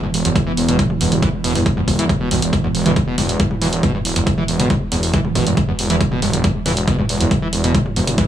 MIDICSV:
0, 0, Header, 1, 5, 480
1, 0, Start_track
1, 0, Tempo, 434783
1, 872, Time_signature, 4, 2, 24, 8
1, 9134, End_track
2, 0, Start_track
2, 0, Title_t, "Ambient pad"
2, 0, Program_c, 0, 92
2, 0, Note_on_c, 0, 52, 78
2, 0, Note_on_c, 0, 59, 81
2, 9134, Note_off_c, 0, 52, 0
2, 9134, Note_off_c, 0, 59, 0
2, 9134, End_track
3, 0, Start_track
3, 0, Title_t, "Acid bass"
3, 0, Program_c, 1, 38
3, 35, Note_on_c, 1, 43, 77
3, 74, Note_off_c, 1, 43, 0
3, 275, Note_on_c, 1, 40, 103
3, 314, Note_off_c, 1, 40, 0
3, 515, Note_on_c, 1, 52, 75
3, 580, Note_off_c, 1, 52, 0
3, 754, Note_on_c, 1, 47, 78
3, 852, Note_off_c, 1, 47, 0
3, 873, Note_on_c, 1, 43, 87
3, 913, Note_off_c, 1, 43, 0
3, 1112, Note_on_c, 1, 40, 102
3, 1153, Note_off_c, 1, 40, 0
3, 1353, Note_on_c, 1, 52, 89
3, 1420, Note_off_c, 1, 52, 0
3, 1592, Note_on_c, 1, 47, 76
3, 1694, Note_off_c, 1, 47, 0
3, 1716, Note_on_c, 1, 43, 78
3, 1754, Note_off_c, 1, 43, 0
3, 1956, Note_on_c, 1, 40, 100
3, 1994, Note_off_c, 1, 40, 0
3, 2196, Note_on_c, 1, 52, 78
3, 2260, Note_off_c, 1, 52, 0
3, 2435, Note_on_c, 1, 47, 71
3, 2532, Note_off_c, 1, 47, 0
3, 2552, Note_on_c, 1, 43, 74
3, 2593, Note_off_c, 1, 43, 0
3, 2916, Note_on_c, 1, 40, 102
3, 2954, Note_off_c, 1, 40, 0
3, 3155, Note_on_c, 1, 52, 75
3, 3220, Note_off_c, 1, 52, 0
3, 3395, Note_on_c, 1, 47, 75
3, 3492, Note_off_c, 1, 47, 0
3, 3511, Note_on_c, 1, 43, 77
3, 3553, Note_off_c, 1, 43, 0
3, 3751, Note_on_c, 1, 40, 102
3, 3793, Note_off_c, 1, 40, 0
3, 3990, Note_on_c, 1, 52, 78
3, 4059, Note_off_c, 1, 52, 0
3, 4231, Note_on_c, 1, 47, 83
3, 4333, Note_off_c, 1, 47, 0
3, 4353, Note_on_c, 1, 43, 73
3, 4393, Note_off_c, 1, 43, 0
3, 4594, Note_on_c, 1, 40, 100
3, 4633, Note_off_c, 1, 40, 0
3, 4834, Note_on_c, 1, 52, 77
3, 4899, Note_off_c, 1, 52, 0
3, 5073, Note_on_c, 1, 47, 73
3, 5171, Note_off_c, 1, 47, 0
3, 5191, Note_on_c, 1, 43, 86
3, 5232, Note_off_c, 1, 43, 0
3, 5431, Note_on_c, 1, 40, 102
3, 5472, Note_off_c, 1, 40, 0
3, 5671, Note_on_c, 1, 52, 84
3, 5739, Note_off_c, 1, 52, 0
3, 5911, Note_on_c, 1, 47, 80
3, 6013, Note_off_c, 1, 47, 0
3, 6034, Note_on_c, 1, 43, 75
3, 6073, Note_off_c, 1, 43, 0
3, 6273, Note_on_c, 1, 40, 96
3, 6313, Note_off_c, 1, 40, 0
3, 6514, Note_on_c, 1, 52, 77
3, 6579, Note_off_c, 1, 52, 0
3, 6753, Note_on_c, 1, 47, 78
3, 6851, Note_off_c, 1, 47, 0
3, 6869, Note_on_c, 1, 43, 77
3, 6911, Note_off_c, 1, 43, 0
3, 7111, Note_on_c, 1, 40, 105
3, 7152, Note_off_c, 1, 40, 0
3, 7350, Note_on_c, 1, 52, 77
3, 7419, Note_off_c, 1, 52, 0
3, 7591, Note_on_c, 1, 47, 84
3, 7693, Note_off_c, 1, 47, 0
3, 7714, Note_on_c, 1, 43, 77
3, 7754, Note_off_c, 1, 43, 0
3, 7954, Note_on_c, 1, 40, 98
3, 7993, Note_off_c, 1, 40, 0
3, 8194, Note_on_c, 1, 52, 73
3, 8259, Note_off_c, 1, 52, 0
3, 8433, Note_on_c, 1, 47, 78
3, 8531, Note_off_c, 1, 47, 0
3, 8551, Note_on_c, 1, 43, 83
3, 8592, Note_off_c, 1, 43, 0
3, 8791, Note_on_c, 1, 40, 104
3, 8832, Note_off_c, 1, 40, 0
3, 9031, Note_on_c, 1, 52, 89
3, 9099, Note_off_c, 1, 52, 0
3, 9134, End_track
4, 0, Start_track
4, 0, Title_t, "Detuned saw bass"
4, 0, Program_c, 2, 39
4, 152, Note_on_c, 2, 28, 89
4, 255, Note_off_c, 2, 28, 0
4, 276, Note_on_c, 2, 28, 84
4, 374, Note_off_c, 2, 28, 0
4, 633, Note_on_c, 2, 28, 94
4, 736, Note_off_c, 2, 28, 0
4, 757, Note_on_c, 2, 28, 78
4, 854, Note_off_c, 2, 28, 0
4, 1114, Note_on_c, 2, 28, 94
4, 1216, Note_off_c, 2, 28, 0
4, 1237, Note_on_c, 2, 28, 81
4, 1334, Note_off_c, 2, 28, 0
4, 1595, Note_on_c, 2, 28, 87
4, 1696, Note_off_c, 2, 28, 0
4, 1718, Note_on_c, 2, 28, 80
4, 1815, Note_off_c, 2, 28, 0
4, 2072, Note_on_c, 2, 28, 95
4, 2175, Note_off_c, 2, 28, 0
4, 2197, Note_on_c, 2, 28, 84
4, 2294, Note_off_c, 2, 28, 0
4, 2553, Note_on_c, 2, 35, 97
4, 2656, Note_off_c, 2, 35, 0
4, 2676, Note_on_c, 2, 28, 78
4, 2773, Note_off_c, 2, 28, 0
4, 3031, Note_on_c, 2, 28, 93
4, 3135, Note_off_c, 2, 28, 0
4, 3154, Note_on_c, 2, 28, 80
4, 3253, Note_off_c, 2, 28, 0
4, 3511, Note_on_c, 2, 28, 93
4, 3615, Note_off_c, 2, 28, 0
4, 3632, Note_on_c, 2, 28, 78
4, 3732, Note_off_c, 2, 28, 0
4, 3990, Note_on_c, 2, 28, 93
4, 4094, Note_off_c, 2, 28, 0
4, 4113, Note_on_c, 2, 28, 84
4, 4212, Note_off_c, 2, 28, 0
4, 4470, Note_on_c, 2, 28, 99
4, 4574, Note_off_c, 2, 28, 0
4, 4594, Note_on_c, 2, 28, 79
4, 4692, Note_off_c, 2, 28, 0
4, 4951, Note_on_c, 2, 28, 96
4, 5055, Note_off_c, 2, 28, 0
4, 5073, Note_on_c, 2, 28, 82
4, 5172, Note_off_c, 2, 28, 0
4, 5432, Note_on_c, 2, 28, 95
4, 5535, Note_off_c, 2, 28, 0
4, 5555, Note_on_c, 2, 28, 82
4, 5653, Note_off_c, 2, 28, 0
4, 5910, Note_on_c, 2, 28, 90
4, 6014, Note_off_c, 2, 28, 0
4, 6036, Note_on_c, 2, 28, 82
4, 6134, Note_off_c, 2, 28, 0
4, 6393, Note_on_c, 2, 28, 99
4, 6496, Note_off_c, 2, 28, 0
4, 6516, Note_on_c, 2, 28, 82
4, 6613, Note_off_c, 2, 28, 0
4, 6871, Note_on_c, 2, 28, 93
4, 6975, Note_off_c, 2, 28, 0
4, 6994, Note_on_c, 2, 28, 79
4, 7092, Note_off_c, 2, 28, 0
4, 7351, Note_on_c, 2, 28, 88
4, 7454, Note_off_c, 2, 28, 0
4, 7474, Note_on_c, 2, 28, 82
4, 7572, Note_off_c, 2, 28, 0
4, 7832, Note_on_c, 2, 28, 88
4, 7935, Note_off_c, 2, 28, 0
4, 7954, Note_on_c, 2, 28, 81
4, 8053, Note_off_c, 2, 28, 0
4, 8310, Note_on_c, 2, 28, 97
4, 8414, Note_off_c, 2, 28, 0
4, 8434, Note_on_c, 2, 28, 80
4, 8532, Note_off_c, 2, 28, 0
4, 8789, Note_on_c, 2, 28, 99
4, 8894, Note_off_c, 2, 28, 0
4, 8913, Note_on_c, 2, 28, 82
4, 9012, Note_off_c, 2, 28, 0
4, 9134, End_track
5, 0, Start_track
5, 0, Title_t, "Drums"
5, 37, Note_on_c, 9, 47, 99
5, 148, Note_off_c, 9, 47, 0
5, 155, Note_on_c, 9, 46, 112
5, 265, Note_off_c, 9, 46, 0
5, 277, Note_on_c, 9, 42, 68
5, 387, Note_off_c, 9, 42, 0
5, 392, Note_on_c, 9, 36, 123
5, 395, Note_on_c, 9, 42, 67
5, 395, Note_on_c, 9, 47, 95
5, 503, Note_off_c, 9, 36, 0
5, 505, Note_off_c, 9, 42, 0
5, 505, Note_off_c, 9, 47, 0
5, 634, Note_on_c, 9, 46, 108
5, 744, Note_off_c, 9, 46, 0
5, 757, Note_on_c, 9, 42, 69
5, 867, Note_off_c, 9, 42, 0
5, 872, Note_on_c, 9, 36, 127
5, 873, Note_on_c, 9, 42, 65
5, 983, Note_off_c, 9, 36, 0
5, 983, Note_off_c, 9, 42, 0
5, 995, Note_on_c, 9, 47, 97
5, 1105, Note_off_c, 9, 47, 0
5, 1113, Note_on_c, 9, 46, 111
5, 1223, Note_off_c, 9, 46, 0
5, 1235, Note_on_c, 9, 42, 62
5, 1235, Note_on_c, 9, 47, 86
5, 1345, Note_off_c, 9, 42, 0
5, 1345, Note_off_c, 9, 47, 0
5, 1352, Note_on_c, 9, 36, 122
5, 1353, Note_on_c, 9, 42, 61
5, 1462, Note_off_c, 9, 36, 0
5, 1463, Note_off_c, 9, 42, 0
5, 1593, Note_on_c, 9, 46, 109
5, 1703, Note_off_c, 9, 46, 0
5, 1716, Note_on_c, 9, 46, 66
5, 1826, Note_off_c, 9, 46, 0
5, 1832, Note_on_c, 9, 36, 122
5, 1833, Note_on_c, 9, 42, 65
5, 1942, Note_off_c, 9, 36, 0
5, 1943, Note_off_c, 9, 42, 0
5, 1956, Note_on_c, 9, 47, 102
5, 2066, Note_off_c, 9, 47, 0
5, 2072, Note_on_c, 9, 36, 66
5, 2073, Note_on_c, 9, 46, 108
5, 2182, Note_off_c, 9, 36, 0
5, 2183, Note_off_c, 9, 46, 0
5, 2197, Note_on_c, 9, 42, 66
5, 2307, Note_off_c, 9, 42, 0
5, 2312, Note_on_c, 9, 36, 120
5, 2314, Note_on_c, 9, 42, 64
5, 2314, Note_on_c, 9, 47, 93
5, 2422, Note_off_c, 9, 36, 0
5, 2424, Note_off_c, 9, 42, 0
5, 2424, Note_off_c, 9, 47, 0
5, 2552, Note_on_c, 9, 46, 114
5, 2663, Note_off_c, 9, 46, 0
5, 2676, Note_on_c, 9, 42, 67
5, 2786, Note_off_c, 9, 42, 0
5, 2792, Note_on_c, 9, 36, 119
5, 2794, Note_on_c, 9, 42, 63
5, 2902, Note_off_c, 9, 36, 0
5, 2904, Note_off_c, 9, 42, 0
5, 2917, Note_on_c, 9, 47, 96
5, 3027, Note_off_c, 9, 47, 0
5, 3033, Note_on_c, 9, 46, 98
5, 3143, Note_off_c, 9, 46, 0
5, 3155, Note_on_c, 9, 42, 61
5, 3155, Note_on_c, 9, 47, 85
5, 3265, Note_off_c, 9, 42, 0
5, 3265, Note_off_c, 9, 47, 0
5, 3271, Note_on_c, 9, 36, 120
5, 3272, Note_on_c, 9, 42, 62
5, 3382, Note_off_c, 9, 36, 0
5, 3382, Note_off_c, 9, 42, 0
5, 3510, Note_on_c, 9, 46, 106
5, 3510, Note_on_c, 9, 47, 86
5, 3621, Note_off_c, 9, 46, 0
5, 3621, Note_off_c, 9, 47, 0
5, 3634, Note_on_c, 9, 42, 63
5, 3745, Note_off_c, 9, 42, 0
5, 3750, Note_on_c, 9, 42, 62
5, 3751, Note_on_c, 9, 36, 120
5, 3860, Note_off_c, 9, 42, 0
5, 3862, Note_off_c, 9, 36, 0
5, 3874, Note_on_c, 9, 47, 101
5, 3984, Note_off_c, 9, 47, 0
5, 3992, Note_on_c, 9, 46, 106
5, 4102, Note_off_c, 9, 46, 0
5, 4114, Note_on_c, 9, 42, 63
5, 4225, Note_off_c, 9, 42, 0
5, 4230, Note_on_c, 9, 42, 64
5, 4230, Note_on_c, 9, 47, 93
5, 4231, Note_on_c, 9, 36, 123
5, 4341, Note_off_c, 9, 36, 0
5, 4341, Note_off_c, 9, 42, 0
5, 4341, Note_off_c, 9, 47, 0
5, 4472, Note_on_c, 9, 46, 108
5, 4582, Note_off_c, 9, 46, 0
5, 4594, Note_on_c, 9, 42, 64
5, 4704, Note_off_c, 9, 42, 0
5, 4711, Note_on_c, 9, 36, 119
5, 4711, Note_on_c, 9, 42, 63
5, 4821, Note_off_c, 9, 36, 0
5, 4822, Note_off_c, 9, 42, 0
5, 4834, Note_on_c, 9, 47, 95
5, 4944, Note_off_c, 9, 47, 0
5, 4949, Note_on_c, 9, 46, 98
5, 5060, Note_off_c, 9, 46, 0
5, 5074, Note_on_c, 9, 42, 62
5, 5074, Note_on_c, 9, 47, 82
5, 5184, Note_off_c, 9, 42, 0
5, 5184, Note_off_c, 9, 47, 0
5, 5190, Note_on_c, 9, 42, 59
5, 5191, Note_on_c, 9, 36, 118
5, 5300, Note_off_c, 9, 42, 0
5, 5301, Note_off_c, 9, 36, 0
5, 5429, Note_on_c, 9, 46, 104
5, 5539, Note_off_c, 9, 46, 0
5, 5553, Note_on_c, 9, 46, 61
5, 5663, Note_off_c, 9, 46, 0
5, 5670, Note_on_c, 9, 42, 60
5, 5671, Note_on_c, 9, 36, 115
5, 5780, Note_off_c, 9, 42, 0
5, 5781, Note_off_c, 9, 36, 0
5, 5793, Note_on_c, 9, 47, 93
5, 5903, Note_off_c, 9, 47, 0
5, 5911, Note_on_c, 9, 36, 62
5, 5911, Note_on_c, 9, 46, 105
5, 6021, Note_off_c, 9, 36, 0
5, 6021, Note_off_c, 9, 46, 0
5, 6034, Note_on_c, 9, 42, 65
5, 6144, Note_off_c, 9, 42, 0
5, 6150, Note_on_c, 9, 36, 113
5, 6151, Note_on_c, 9, 42, 63
5, 6151, Note_on_c, 9, 47, 92
5, 6261, Note_off_c, 9, 36, 0
5, 6261, Note_off_c, 9, 42, 0
5, 6261, Note_off_c, 9, 47, 0
5, 6390, Note_on_c, 9, 46, 104
5, 6501, Note_off_c, 9, 46, 0
5, 6514, Note_on_c, 9, 42, 63
5, 6624, Note_off_c, 9, 42, 0
5, 6631, Note_on_c, 9, 36, 114
5, 6631, Note_on_c, 9, 42, 65
5, 6741, Note_off_c, 9, 36, 0
5, 6741, Note_off_c, 9, 42, 0
5, 6753, Note_on_c, 9, 47, 90
5, 6864, Note_off_c, 9, 47, 0
5, 6870, Note_on_c, 9, 46, 100
5, 6980, Note_off_c, 9, 46, 0
5, 6993, Note_on_c, 9, 42, 67
5, 6993, Note_on_c, 9, 47, 80
5, 7104, Note_off_c, 9, 42, 0
5, 7104, Note_off_c, 9, 47, 0
5, 7110, Note_on_c, 9, 42, 63
5, 7111, Note_on_c, 9, 36, 119
5, 7221, Note_off_c, 9, 36, 0
5, 7221, Note_off_c, 9, 42, 0
5, 7350, Note_on_c, 9, 46, 96
5, 7350, Note_on_c, 9, 47, 83
5, 7460, Note_off_c, 9, 46, 0
5, 7460, Note_off_c, 9, 47, 0
5, 7473, Note_on_c, 9, 42, 64
5, 7584, Note_off_c, 9, 42, 0
5, 7591, Note_on_c, 9, 36, 114
5, 7591, Note_on_c, 9, 42, 62
5, 7701, Note_off_c, 9, 36, 0
5, 7701, Note_off_c, 9, 42, 0
5, 7713, Note_on_c, 9, 47, 94
5, 7823, Note_off_c, 9, 47, 0
5, 7830, Note_on_c, 9, 46, 103
5, 7940, Note_off_c, 9, 46, 0
5, 7954, Note_on_c, 9, 42, 65
5, 8065, Note_off_c, 9, 42, 0
5, 8071, Note_on_c, 9, 36, 114
5, 8071, Note_on_c, 9, 42, 66
5, 8071, Note_on_c, 9, 47, 88
5, 8181, Note_off_c, 9, 36, 0
5, 8182, Note_off_c, 9, 42, 0
5, 8182, Note_off_c, 9, 47, 0
5, 8311, Note_on_c, 9, 46, 105
5, 8421, Note_off_c, 9, 46, 0
5, 8435, Note_on_c, 9, 42, 63
5, 8546, Note_off_c, 9, 42, 0
5, 8551, Note_on_c, 9, 36, 110
5, 8551, Note_on_c, 9, 42, 67
5, 8661, Note_off_c, 9, 36, 0
5, 8662, Note_off_c, 9, 42, 0
5, 8676, Note_on_c, 9, 47, 87
5, 8786, Note_off_c, 9, 47, 0
5, 8792, Note_on_c, 9, 46, 100
5, 8903, Note_off_c, 9, 46, 0
5, 8914, Note_on_c, 9, 42, 68
5, 8914, Note_on_c, 9, 47, 82
5, 9024, Note_off_c, 9, 42, 0
5, 9024, Note_off_c, 9, 47, 0
5, 9030, Note_on_c, 9, 42, 65
5, 9031, Note_on_c, 9, 36, 119
5, 9134, Note_off_c, 9, 36, 0
5, 9134, Note_off_c, 9, 42, 0
5, 9134, End_track
0, 0, End_of_file